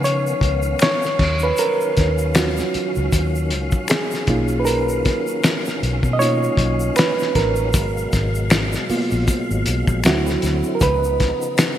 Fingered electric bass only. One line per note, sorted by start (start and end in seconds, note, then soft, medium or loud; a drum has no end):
0.00 0.32 C#3 medium
0.42 0.73 C#2 medium
1.20 1.51 D#2 loud
1.98 2.60 D#2 medium
2.75 muted fingered electric bass stroke soft
2.97 3.10 C#2 medium
3.13 3.52 D#2 loud
3.52 3.69 C#2 medium
4.28 5.08 B1 medium
5.83 6.00 B1 medium
6.04 6.48 B2 medium
6.58 6.89 B1 medium
7.36 7.75 A1 medium
7.75 8.05 G#1 medium
8.14 8.75 G#1 medium
8.90 muted fingered electric bass stroke soft
9.12 9.25 A#1 medium
9.51 9.63 G#1 medium
9.67 9.85 B1 medium
9.88 10.01 A#1 medium
10.05 10.36 D2 loud
10.43 10.61 D2 medium
10.82 11.31 C#2 medium